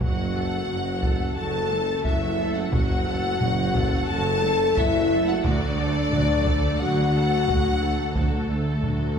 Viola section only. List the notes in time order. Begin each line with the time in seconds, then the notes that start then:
0.02 F#3 F#4
0.35 A3 A4
0.69 F#3 F#4
1.03 A3 A4
1.36 F#3 F#4
1.71 A3 A4
2.06 F#3 F#4
2.39 A3 A4
2.72 F#3 F#4
3.07 A3 A4
3.40 F#3 F#4
3.75 A3 A4
4.09 F#3 F#4
4.43 A3 A4
4.77 F#3 F#4
5.12 A3 A4
5.46 F#3 F#4
5.79 A3 A4
6.13 F#3 F#4
6.47 A3 A4
6.81 F#3 F#4
7.14 A3 A4
7.48 F#3 F#4
7.82 A3 A4
8.16 F#3 F#4
8.50 A3 A4
8.84 F#3 F#4